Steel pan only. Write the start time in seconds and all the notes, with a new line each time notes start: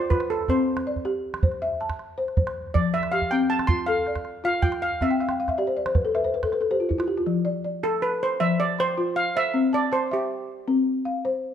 Already playing: C5
0.10 B4
0.30 A4
0.50 C5
2.74 D5
2.94 E5
3.12 F5
3.31 G5
3.50 A5
3.67 C6
3.86 F5
4.45 F5
4.62 G5
4.82 F5
5.02 E5
7.84 A4
8.02 B4
8.23 C5
8.40 E5
8.60 D5
8.80 C5
9.16 F5
9.37 E5
9.74 D5
9.93 C5
10.13 G4